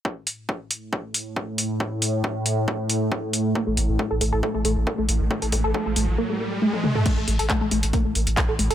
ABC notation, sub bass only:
X:1
M:4/4
L:1/16
Q:1/4=137
K:Cmix
V:1 name="Sub bass" clef=bass
z16 | z16 | z A,,, A,,, A,,, z A,,, A,,, A,,, z A,,, A,,, A,,, z A,,, A,,, A,,, | z A,,, A,,, A,,, z A,,, A,,, A,,, z8 |
z A,,, A,,, A,,, z A,,, A,,, A,,, z A,,, A,,, A,,, z A,,, A,,, A,,, |]